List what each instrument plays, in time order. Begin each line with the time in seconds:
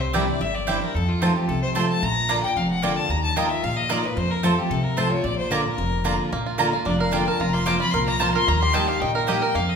Already playing: upright bass C2, steel-string acoustic guitar C3
0.01 fiddle C5
0.13 steel-string acoustic guitar E3 G3 D4 E4, mandolin C4 E4 D5 G5, fiddle A#4
0.28 steel-string acoustic guitar D4 E4, fiddle D5
0.41 upright bass G1, steel-string acoustic guitar G2, fiddle E5
0.55 fiddle D5
0.67 steel-string acoustic guitar E3 G3 D4 E4, mandolin C4 E4 D5 G5, fiddle C5
0.82 steel-string acoustic guitar D4 E4, fiddle A#4
0.95 upright bass F2, steel-string acoustic guitar F2, fiddle A4
1.08 fiddle F4
1.22 steel-string acoustic guitar F3 A3 C4 F4, mandolin C4 F4 C5 A5, fiddle D#4
1.36 steel-string acoustic guitar C4 F4, fiddle G4
1.48 upright bass C2, steel-string acoustic guitar C3, fiddle A4
1.62 fiddle C5
1.75 steel-string acoustic guitar F3 A3 C4 F4, mandolin C4 F4 C5 A5, fiddle C6
1.89 fiddle A5
2.03 upright bass A#1, steel-string acoustic guitar A#2, fiddle A#5
2.29 steel-string acoustic guitar D3 A#3 D4 F4, mandolin A#3 F4 D5 A#5
2.43 steel-string acoustic guitar D4 F4, fiddle G5
2.56 upright bass F1, steel-string acoustic guitar F2, fiddle F5
2.70 fiddle F#5
2.82 steel-string acoustic guitar D3 A#3 D4 F4, mandolin A#3 F4 D5 A#5, fiddle G5
2.97 fiddle A5
3.09 upright bass D#2, steel-string acoustic guitar D#3, fiddle A#5
3.24 fiddle A5
3.36 mandolin A#3 F4 D#5 A#5, steel-string acoustic guitar A#3 D#4 F4 A#4, fiddle G5
3.50 steel-string acoustic guitar F4 A#4, fiddle E5
3.64 upright bass A#1, steel-string acoustic guitar A#2, fiddle F5
3.77 fiddle D#5
3.89 mandolin A#3 F4 D#5 A#5, steel-string acoustic guitar A#3 D#4 F4 A#4, fiddle D5
4.03 steel-string acoustic guitar F4 A#4, fiddle B4
4.17 upright bass F2, steel-string acoustic guitar F2, fiddle C5
4.31 fiddle A#4
4.43 steel-string acoustic guitar F3 A3 C4 F4, mandolin C4 F4 C5 A5, fiddle A4
4.58 steel-string acoustic guitar C4 F4, fiddle G4
4.70 upright bass C2, steel-string acoustic guitar C3, fiddle A4
4.84 fiddle A#4
4.97 steel-string acoustic guitar F3 A3 C4 F4, mandolin C4 F4 C5 A5, fiddle C5
5.10 steel-string acoustic guitar C4 F4, fiddle C#5
5.24 upright bass A#1, steel-string acoustic guitar A#2, fiddle D5
5.38 fiddle C5
5.50 steel-string acoustic guitar D3 A#3 D4 F4, mandolin A#3 F4 D5 A#5, fiddle A#4
5.64 steel-string acoustic guitar D4 F4, fiddle A#4
5.78 upright bass F1, steel-string acoustic guitar F2
6.04 steel-string acoustic guitar D3 A#3 D4 F4, mandolin A#3 F4 D5 A#5
6.32 upright bass A#1, steel-string acoustic guitar A#2, five-string banjo A#3
6.46 five-string banjo F4
6.58 steel-string acoustic guitar D3 A#3 D4 F4, mandolin A#3 F4 D5 A#5, five-string banjo A#3
6.72 steel-string acoustic guitar D4 F4, five-string banjo F4
6.85 upright bass F1, steel-string acoustic guitar F2, five-string banjo D4, fiddle D5
7.00 five-string banjo A#4, fiddle F5
7.11 steel-string acoustic guitar D3 A#3 D4 F4, mandolin A#3 F4 D5 A#5, five-string banjo F4, fiddle G5
7.26 steel-string acoustic guitar D4 F4, five-string banjo A#4, fiddle A5
7.40 upright bass F1, steel-string acoustic guitar F2, five-string banjo F4, fiddle A#5
7.53 five-string banjo A#3, fiddle C6
7.66 steel-string acoustic guitar F3 A#3 C4 F4, mandolin A#3 F4 C5 A#5, five-string banjo F4, fiddle D6
7.80 steel-string acoustic guitar C4 F4, five-string banjo F4, fiddle B5
7.92 upright bass C2, steel-string acoustic guitar A#2, five-string banjo A#4, fiddle C6
8.05 five-string banjo A#3, fiddle A#5
8.19 steel-string acoustic guitar F3 A#3 C4 F4, mandolin A#3 F4 C5 A#5, five-string banjo F4, fiddle A5
8.34 steel-string acoustic guitar C4 F4, five-string banjo A#4, fiddle C6
8.47 upright bass D#2, steel-string acoustic guitar D#3, five-string banjo A#3, fiddle A#5
8.61 five-string banjo G4, fiddle C6
8.73 steel-string acoustic guitar G3 A#3 D#4 G4, mandolin A#3 G4 D#5 G5, five-string banjo A#3, fiddle A5
8.87 steel-string acoustic guitar D#4 G4, five-string banjo G4, fiddle F5
9.01 upright bass A#1, steel-string acoustic guitar A#2, five-string banjo D#4, fiddle G5
9.15 five-string banjo A#4, fiddle A#4
9.27 steel-string acoustic guitar G3 A#3 D#4 G4, mandolin A#3 G4 D#5 G5, five-string banjo G4, fiddle D#5
9.42 steel-string acoustic guitar G4, five-string banjo A#4, fiddle G5
9.55 upright bass F2, steel-string acoustic guitar F2, five-string banjo A#3, fiddle F5
9.70 fiddle D#5